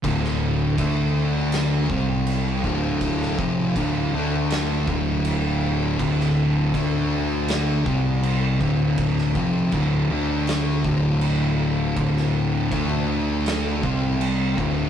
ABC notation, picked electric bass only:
X:1
M:4/4
L:1/8
Q:1/4=80
K:Dm
V:1 name="Picked electric bass" clef=bass
D,,,2 D,,3 C,,2 D,,,- | D,,, F,,, D,,, D,,2 D,,,3 | D,,,2 D,,3 C,,2 D,,,- | D,,, F,,, D,,, D,,2 D,,,3 |
D,,,2 D,,3 C,,2 D,,, |]